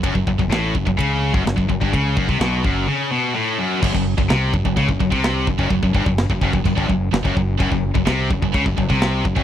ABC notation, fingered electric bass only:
X:1
M:4/4
L:1/16
Q:1/4=127
K:F#phr
V:1 name="Fingered electric bass" clef=bass
F,,, F,,, F,,, F,,, A,,,2 F,,, F,,, C,,3 F,,, F,,, F,,, F,,, G,,, | C,,2 F,,, ^B,,, =B,,,2 F,,,2 z8 | F,,, F,,,2 F,,, ^B,,,2 F,,, F,,, C,, F,,, F,,, B,,,3 F,,, F,,, | F,,, F,,, G,,, F,,,2 F,,, F,,, F,,, F,,, G,,, F,,,2 F,,, F,,, F,,,2 |
F,,, F,,,2 F,,, ^B,,,2 F,,, F,,, C,, F,,, F,,, B,,,3 F,,, F,,, |]